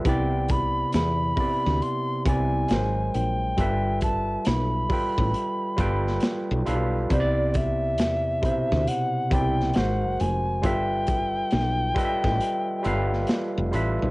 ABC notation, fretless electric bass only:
X:1
M:4/4
L:1/16
Q:"Swing 16ths" 1/4=68
K:G
V:1 name="Fretless electric bass" clef=bass
C,,4 E,,2 z D,, z2 C,,2 _A,,,2 _B,,,2 | G,,,4 B,,,2 z A,,, z2 G,,,2 z B,,, B,,,2 | C,,4 E,,2 z D,, z2 C,,2 _A,,, _G,,, =F,,,2 | G,,,4 B,,,2 z A,,, z2 G,,,2 z =F,,, A,,, B,,, |]